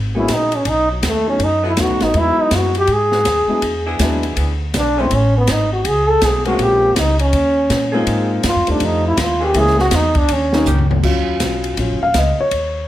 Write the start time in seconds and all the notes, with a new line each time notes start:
Already playing: G#1
0.15 F#3 G#3 A#3 B3 C#4 D#4 E4 G#4
0.28 A#1, kick, snare, hi-hat pedal, ride
0.33 D#4
0.52 C#4, ride
0.65 B1, kick, ride
0.69 D#4
0.92 F#3
1.02 D#2, kick, snare, hi-hat pedal, ride
1.07 A3
1.26 F#3 A3 B3 C#4 D#4
1.39 F#2, kick, ride
1.44 D#4
1.63 F#3 B3 D#4 A4
1.67 E4
1.76 D#2 F#3 A3 B3 C#4 D#4, kick, snare, hi-hat pedal, ride
1.81 F#4
1.89 B1
2.00 A1 D#4, snare, ride
2.13 E2 F#3 G#3 B3 D#4 E4, kick, ride
2.19 E4
2.37 muted upright bass stroke
2.41 D#4
2.51 F#2, kick, snare, hi-hat pedal, ride
2.56 F#4
2.75 G4, ride
2.87 G#2, kick, ride
2.93 G#4
3.12 E3 G#3 D#4 F#4, snare
3.25 D#2, kick, snare, hi-hat pedal, ride
3.47 F#3 G#3 B3 D4 E4, muted upright bass stroke
3.62 E2, kick, ride
3.86 B3 D4 E4 G#4
3.99 D#2 F#3 G#3 B3 D4 E4, kick, snare, hi-hat pedal, ride
4.23 ride
4.36 D2 E3 B3 D4 G#4, kick, ride
4.74 B1, kick, snare, hi-hat pedal, ride
4.78 D4
4.97 E3 G#3 A3 B3 C4 C#4 E4 G#4
5.11 A1 C#4, kick, ride
5.38 B3
5.47 G#1 D#4, kick, snare, hi-hat pedal, ride
5.73 F#4
5.85 C#2 G#4, kick, ride
6.09 A4
6.21 B1 G#4, kick, snare, hi-hat pedal, ride
6.45 F3 G#3 A#3 C4 C#4 F4 F#4, ride
6.59 A#1 G4, kick, ride
6.96 C#2 D#4, kick, snare, hi-hat pedal, ride
7.19 C#4, ride
7.33 D#2, kick, ride
7.70 A#2, kick, snare, hi-hat pedal, ride
7.92 F3 G#3 A#3 C4 D#4 F4 G#4
8.07 G#2, kick, ride
8.43 G2, kick, snare, hi-hat pedal, ride
8.48 F4
8.56 F2
8.67 D#2 G3 A3 C4 D#4 F4, ride
8.71 D4
8.80 F2, kick, ride
8.85 D#4
9.08 E4
9.17 D#2, kick, snare, hi-hat pedal, ride
9.22 F4
9.40 E3 A#3 C#4 G#4
9.44 G4
9.54 C#2 E3 G#3 A#3 C#4 E4, kick, ride
9.59 G#4
9.67 snare
9.79 F#4, snare
9.91 E2, kick, snare, hi-hat pedal, ride
9.95 D#4
10.15 D4, kick, ride
10.28 D#2 C#4, kick, ride
10.53 D#3 G3 A#3 C#4 D#4, snare
10.66 C#2 D#3 A#3 C#4 G4, floor tom, hi-hat pedal
10.79 floor tom
10.91 floor tom
11.03 D#2 F#3 C#4 F4, kick, crash
11.40 B1, kick, snare, hi-hat pedal, ride
11.64 ride
11.77 A#1 F#3 C#4 F4, kick, ride
11.90 F#1
12.02 D#1 F5
12.14 C#2 D#5, kick, snare, hi-hat pedal, ride
12.38 C#5, muted upright bass stroke
12.51 D#2, kick, ride